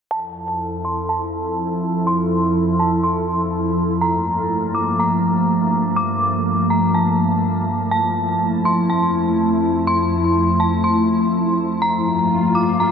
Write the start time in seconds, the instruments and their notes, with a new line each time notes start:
0.11 ambient pad F2 F3 E4 A4, synth bell A5
0.85 synth bell C6
1.09 synth bell A5
2.07 synth bell C6
2.79 synth bell A5
3.04 synth bell C6
4.01 ambient pad G2 F3 A3 A#3, synth bell A#5
4.75 synth bell D6
5.00 synth bell A#5
5.96 synth bell D6
6.70 synth bell A#5
6.94 synth bell A5
7.91 ambient pad F2 F3 A3 E4, synth bell A5
8.65 synth bell C6
8.90 synth bell A5
9.87 synth bell C6
10.60 synth bell A5
10.84 synth bell C6
11.82 ambient pad G2 A#3, synth bell A#5, swell
12.55 synth bell D6
12.80 synth bell A#5